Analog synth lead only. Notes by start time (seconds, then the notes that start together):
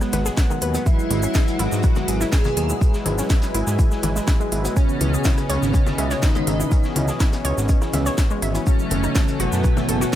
0.86 E4
1.59 F#4
2.33 G#4
4.76 C#4
5.50 C#4
6.23 D#4
8.67 C#4
9.40 B3